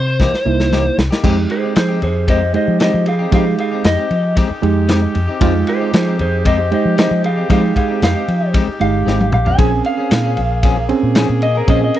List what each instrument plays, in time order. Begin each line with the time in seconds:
Already playing: fingered electric bass C3, lead electric guitar C5
0.07 muted clean electric guitar stroke
0.19 clean electric guitar E3 A#3 D#4 G4, kick, snare
0.33 muted fingered electric bass stroke, muted clean electric guitar stroke, snare
0.46 fingered electric bass C2, reed electric piano A#3 D#4 E4, muted clean electric guitar stroke
0.60 snare
0.71 clean electric guitar E3 A#3 D#4 G4, snare
0.85 muted clean electric guitar stroke
0.97 fingered electric bass C2, muted clean electric guitar stroke, snare
1.11 clean electric guitar A#3 D#4 G4, snare
1.23 fingered electric bass F2, clean electric guitar G#3 C4 D#4 G4, reed electric piano G#3 D#4 G4, horn section G#3 D#4 G4, kick, crash
1.37 muted clean electric guitar stroke
1.50 electric slide guitar G#4 C5, muted clean electric guitar stroke, ride
1.63 clean electric guitar C4 D#4 G4
1.76 fingered electric bass F3, electric slide guitar G#4 C5, muted clean electric guitar stroke, snare, ride
1.89 clean electric guitar C4 D#4 G4
2.02 fingered electric bass F2, electric slide guitar G#4 C5, ride
2.15 muted clean electric guitar stroke
2.28 clean electric guitar G#3 C4 D#4 G4, electric slide guitar C5 D#5, kick, ride
2.41 muted clean electric guitar stroke
2.54 reed electric piano G#3 D#4 G4, electric slide guitar C5 D#5, muted clean electric guitar stroke, ride
2.68 fingered electric bass F3
2.79 clean electric guitar G#3 C4 D#4 G4, electric slide guitar C5 D#5, snare, ride
2.94 fingered electric bass F3, muted clean electric guitar stroke
3.06 electric slide guitar G#4 F5, muted clean electric guitar stroke, ride
3.19 clean electric guitar C4 D#4 G4
3.31 fingered electric bass F3, reed electric piano G#3 D#4 G4, clean electric guitar G#3 C4 D#4 G4, electric slide guitar G#4 F5, kick, ride
3.46 muted clean electric guitar stroke
3.58 electric slide guitar G#4 F5, muted clean electric guitar stroke, ride
3.71 clean electric guitar C4 D#4 G4
3.84 fingered electric bass F2, electric slide guitar D#5, muted clean electric guitar stroke, snare, ride
3.97 clean electric guitar C4 D#4 G4
4.11 fingered electric bass F3, ride
4.23 muted clean electric guitar stroke
4.35 clean electric guitar G#3 C4 D#4 G4, kick, ride
4.49 muted clean electric guitar stroke, muted fingered electric bass stroke
4.62 fingered electric bass F2, reed electric piano G#3 D#4 G4, muted clean electric guitar stroke, ride
4.88 clean electric guitar G#3 C4 D#4 G4, snare, ride
5.02 muted clean electric guitar stroke
5.14 fingered electric bass F2, muted clean electric guitar stroke, ride
5.28 clean electric guitar C4 D#4 G4
5.41 fingered electric bass F2, clean electric guitar G#3 C4 D#4 G4, reed electric piano G#3 D#4 F4, kick, ride
5.54 muted clean electric guitar stroke
5.67 electric slide guitar G#4 C5, muted clean electric guitar stroke, ride
5.80 clean electric guitar C4 D#4 G4
5.93 fingered electric bass F3, electric slide guitar G#4 C5, muted clean electric guitar stroke, snare, ride
6.06 clean electric guitar C4 D#4 G4
6.19 fingered electric bass F2, electric slide guitar G#4 C5, ride
6.32 muted clean electric guitar stroke
6.45 clean electric guitar G#3 C4 D#4 G4, electric slide guitar C5 D#5, kick, ride
6.59 muted clean electric guitar stroke
6.71 reed electric piano G#3 D#4 G4, electric slide guitar C5 D#5, muted clean electric guitar stroke, ride
6.85 fingered electric bass F3
6.97 clean electric guitar G#3 C4 D#4 G4, electric slide guitar C5 D#5, snare, ride
7.11 fingered electric bass F3, muted clean electric guitar stroke
7.23 electric slide guitar G#4 F5, muted clean electric guitar stroke, ride
7.36 clean electric guitar C4 D#4 G4
7.49 fingered electric bass F3, clean electric guitar G#3 C4 D#4 G4, reed electric piano G#3 D#4 G4, electric slide guitar G#4 F5, kick, ride
7.63 muted clean electric guitar stroke
7.75 electric slide guitar G#4 F5, muted clean electric guitar stroke, kick, ride
7.88 clean electric guitar C4 D#4 G4
8.01 fingered electric bass F2, electric slide guitar F5, muted clean electric guitar stroke, snare, ride
8.14 clean electric guitar C4 D#4 G4
8.28 fingered electric bass F3, ride
8.41 muted clean electric guitar stroke
8.54 clean electric guitar G#3 C4 D#4 G4, kick, ride
8.68 muted clean electric guitar stroke, muted fingered electric bass stroke
8.80 fingered electric bass G1, reed electric piano G#3 D#4 G4, electric slide guitar F5, muted clean electric guitar stroke, ride
9.06 fingered electric bass G#1, clean electric guitar G#3 C4 D#4 G4, snare
9.20 muted clean electric guitar stroke, high tom
9.32 fingered electric bass A#1, electric slide guitar F5, muted clean electric guitar stroke, mid tom
9.45 clean electric guitar C4 D#4 G4, electric slide guitar G#5, floor tom
9.58 fingered electric bass A#1, clean electric guitar F3 C4 C#4 G#4, horn section A#3 G#4, reed electric piano C4 C#4 G#4, kick, ride
9.72 muted clean electric guitar stroke
9.84 electric slide guitar F5, muted clean electric guitar stroke, ride
9.98 clean electric guitar C4 C#4 G#4
10.11 fingered electric bass A#2, muted clean electric guitar stroke, snare, ride
10.24 clean electric guitar C4 C#4 G#4
10.37 fingered electric bass A#1, ride
10.51 muted clean electric guitar stroke
10.63 clean electric guitar F3 C4 C#4 G#4, kick, ride
10.78 muted clean electric guitar stroke
10.89 reed electric piano C4 C#4 G#4, muted clean electric guitar stroke, ride
11.03 fingered electric bass A#2
11.15 clean electric guitar F3 C4 C#4 G#4, snare, ride
11.29 fingered electric bass A#2, muted clean electric guitar stroke
11.42 electric slide guitar D#5, muted clean electric guitar stroke, ride
11.55 clean electric guitar C4 C#4 G#4, electric slide guitar A#4
11.68 fingered electric bass A#2, clean electric guitar F3 C4 C#4 G#4, reed electric piano C4 C#4 G#4, electric slide guitar D#5, kick, ride
11.82 electric slide guitar D#5, muted clean electric guitar stroke
11.94 electric slide guitar A#4, muted clean electric guitar stroke, ride